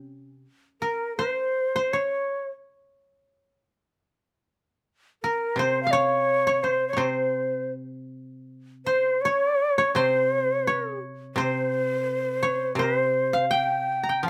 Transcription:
0.00 0.43 C3 soft
0.00 0.27 C#4 soft
0.00 0.45 G4 soft
0.81 1.16 A#4 medium
0.81 2.66 A#4 soft
1.17 1.94 C5 medium
1.17 1.75 C5 medium
1.76 1.99 C5 medium
1.93 2.48 C#5 medium
1.93 3.59 C#5 medium
5.23 5.59 A#4 medium
5.23 7.08 A#4 medium
5.56 6.95 C3 soft
5.56 5.82 C5 medium
5.56 5.99 C5 medium
5.83 5.93 F5 medium
5.83 7.31 F5 soft
5.92 6.65 C#5 medium
5.92 6.46 C#5 medium
6.47 6.70 C#5 medium
6.63 6.88 C5 medium
6.63 6.97 C5 soft
6.88 6.99 C#5 soft
6.93 9.22 C3 soft
6.93 7.04 C#5 soft
6.98 8.69 C5 soft
6.98 7.71 C5 medium
8.86 9.23 C5 medium
8.86 9.31 C5 medium
9.21 9.94 C#5 medium
9.21 9.78 C#5 medium
9.78 10.02 C#5 medium
9.95 11.34 C3 soft
9.95 10.98 C5 medium
9.95 10.73 C5 medium
10.67 11.44 C#5 medium
11.35 12.74 C3 medium
11.35 12.73 C5 medium
11.35 11.90 C5 medium
11.90 12.03 B4 medium
12.03 12.49 A#4 medium
12.43 12.85 C#5 medium
12.75 14.25 C3 medium
12.75 12.98 A#4 medium
12.75 14.30 C5 medium
12.98 13.46 C5 medium
13.33 14.28 F5 medium
13.50 14.28 G5 medium
13.50 14.09 G5 medium
14.03 14.30 A#5 soft
14.09 14.30 G5 soft
14.23 14.30 F3 soft
14.23 14.30 F5 medium

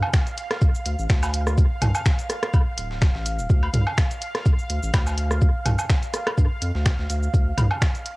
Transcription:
0.00 8.17 F5 medium
0.00 low woodblock medium
0.14 finger snap medium
0.14 kick loud
0.14 snare loud
0.14 shaker medium
0.27 closed hi-hat soft
0.27 shaker soft
0.38 closed hi-hat medium
0.38 shaker medium
0.51 cross-stick medium
0.51 snare medium
0.51 closed hi-hat soft
0.62 kick loud
0.62 shaker medium
0.75 shaker soft
0.86 0.96 D2 medium
0.86 closed hi-hat loud
0.86 shaker medium
0.99 1.07 A1 loud
0.99 shaker soft
1.10 1.66 D2 loud
1.10 finger snap medium
1.10 kick loud
1.10 snare loud
1.10 shaker medium
1.23 snare soft
1.23 high woodblock medium
1.23 low woodblock medium
1.23 shaker soft
1.34 closed hi-hat loud
1.34 shaker medium
1.47 cross-stick medium
1.47 shaker soft
1.58 kick loud
1.58 shaker medium
1.82 1.92 C2 medium
1.82 closed hi-hat loud
1.82 mid tom medium
1.82 low woodblock medium
1.82 shaker medium
1.95 low woodblock medium
1.95 shaker soft
2.06 finger snap medium
2.06 kick loud
2.06 snare loud
2.06 shaker medium
2.19 closed hi-hat soft
2.19 shaker soft
2.30 cross-stick medium
2.30 closed hi-hat medium
2.30 shaker medium
2.30 shaker soft
2.43 cross-stick medium
2.43 closed hi-hat soft
2.54 kick loud
2.54 high woodblock medium
2.54 shaker medium
2.78 3.10 D1 medium
2.78 closed hi-hat loud
2.78 shaker medium
2.91 snare medium
3.02 finger snap medium
3.02 kick loud
3.02 snare loud
3.02 shaker medium
3.15 3.40 A1 medium
3.15 snare medium
3.26 closed hi-hat medium
3.26 shaker medium
3.26 shaker soft
3.39 3.47 D1 medium
3.39 shaker soft
3.50 3.68 D2 loud
3.50 kick loud
3.50 shaker medium
3.63 high woodblock medium
3.74 3.84 C2 medium
3.74 closed hi-hat medium
3.74 mid tom medium
3.74 shaker medium
3.87 low woodblock medium
3.98 finger snap medium
3.98 kick loud
3.98 snare loud
3.98 shaker loud
4.11 closed hi-hat soft
4.11 shaker soft
4.22 closed hi-hat medium
4.22 shaker medium
4.35 cross-stick medium
4.35 snare medium
4.35 closed hi-hat soft
4.46 kick loud
4.46 shaker medium
4.59 shaker soft
4.70 4.80 D2 medium
4.70 closed hi-hat loud
4.70 shaker medium
4.83 4.91 A1 loud
4.83 shaker soft
4.94 5.50 D2 loud
4.94 finger snap medium
4.94 kick loud
4.94 snare loud
4.94 high woodblock medium
4.94 shaker medium
5.07 snare medium
5.07 low woodblock medium
5.07 shaker soft
5.18 closed hi-hat medium
5.18 shaker medium
5.31 cross-stick medium
5.31 shaker soft
5.42 kick loud
5.42 shaker medium
5.66 5.76 C2 medium
5.66 closed hi-hat medium
5.66 mid tom medium
5.66 low woodblock medium
5.66 shaker medium
5.79 low woodblock medium
5.79 shaker soft
5.90 finger snap medium
5.90 kick loud
5.90 snare loud
5.90 shaker loud
6.03 closed hi-hat soft
6.03 shaker soft
6.14 cross-stick medium
6.14 closed hi-hat medium
6.14 shaker soft
6.14 shaker medium
6.27 cross-stick medium
6.27 closed hi-hat soft
6.27 high woodblock medium
6.38 6.48 G2 medium
6.38 kick loud
6.38 shaker medium
6.62 6.72 F2 loud
6.62 closed hi-hat medium
6.62 shaker medium
6.75 6.92 D2 loud
6.75 snare medium
6.86 finger snap medium
6.86 kick loud
6.86 snare loud
6.86 shaker medium
6.99 7.07 D2 medium
6.99 snare medium
7.10 7.28 D2 loud
7.10 closed hi-hat medium
7.10 shaker soft
7.10 shaker medium
7.23 shaker soft
7.34 7.52 D2 loud
7.34 kick loud
7.34 shaker medium
7.58 7.68 C2 medium
7.58 closed hi-hat medium
7.58 mid tom medium
7.58 high woodblock medium
7.58 shaker medium
7.71 low woodblock medium
7.82 finger snap medium
7.82 kick loud
7.82 snare loud
7.82 shaker loud
7.95 closed hi-hat soft
7.95 shaker soft
8.06 closed hi-hat medium
8.06 shaker medium

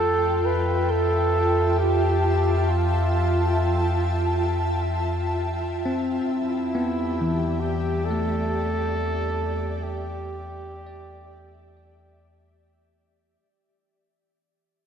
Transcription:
0.00 6.19 F2 medium
0.00 6.24 F4 medium
0.00 0.43 A4 medium
0.00 0.47 A4 medium
0.00 13.41 E5 medium
0.00 8.77 G5 medium
0.46 0.92 B4 medium
0.70 7.57 A5 medium
0.90 1.80 A4 medium
1.78 2.71 G4 medium
2.70 4.47 F4 medium
5.86 6.42 C4 medium
6.24 13.36 E2 medium
6.24 7.62 E4 medium
6.24 13.41 G4 medium
6.75 9.54 B3 medium
6.81 13.41 D5 medium
7.21 8.29 E3 medium
7.60 8.07 G4 medium
8.05 9.85 A4 loud
8.10 10.90 A3 medium
9.83 12.51 G4 medium
10.87 13.67 D5 medium

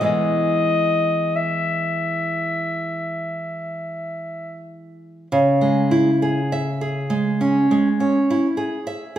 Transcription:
0.01 5.27 E3 soft
0.01 5.27 G#3 soft
0.01 5.28 B3 soft
0.05 1.37 D#5 medium
1.36 4.68 E5 soft
5.32 7.66 C#3 medium
5.61 6.10 G#3 soft
5.91 6.40 E4 soft
6.22 6.70 G#4 soft
6.52 7.00 E5 soft
6.81 7.29 G#4 soft
7.10 7.57 G#3 soft
7.41 7.87 C#4 soft
7.71 8.17 G#3 soft
8.00 8.46 C#4 soft
8.30 8.76 E4 soft
8.57 9.04 G#4 soft
8.87 9.19 E5 soft

